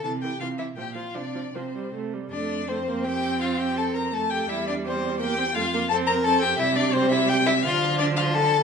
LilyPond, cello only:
\new Staff \with { instrumentName = "Cello" } { \clef bass \time 3/4 \key f \major \tempo 4 = 169 c4 c4 bes,4 | c4 c4 c4 | f,2.~ | f,2. |
e,2. | f,2. | c2. | d2. | }